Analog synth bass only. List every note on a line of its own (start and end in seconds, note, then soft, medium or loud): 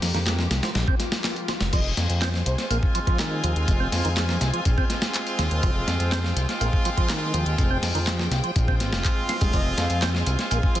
0.02 0.12 F2 loud
0.14 0.47 F2 medium
0.51 0.61 C2 loud
0.75 0.85 A#1 medium
1.61 1.71 F1 medium
1.73 1.93 F1 medium
1.97 2.07 F2 loud
2.10 2.43 F2 medium
2.46 2.56 C2 loud
2.70 2.81 A#1 medium
3.44 3.54 D#2 medium
3.56 3.66 D#2 loud
3.68 3.88 F1 loud
3.92 4.02 F2 loud
4.05 4.38 F2 medium
4.41 4.51 C2 loud
4.65 4.76 A#1 medium
5.39 5.49 D#2 medium
5.51 5.61 D#2 medium
5.63 5.83 F1 loud
5.88 5.98 F2 loud
6.00 6.33 F2 medium
6.36 6.46 C2 loud
6.61 6.71 A#1 medium
7.34 7.44 D#2 medium
7.46 7.56 D#2 medium
7.58 7.78 F1 loud
7.82 7.93 F2 loud
7.95 8.28 F2 medium
8.31 8.41 C2 loud
8.56 8.81 A#1 medium
8.80 8.94 G#1 medium
8.92 9.02 F1 medium
9.41 9.51 D#1 medium
9.53 9.73 F1 loud
9.78 9.88 F2 loud
9.90 10.23 F2 medium
10.27 10.37 C2 loud
10.51 10.61 A#1 medium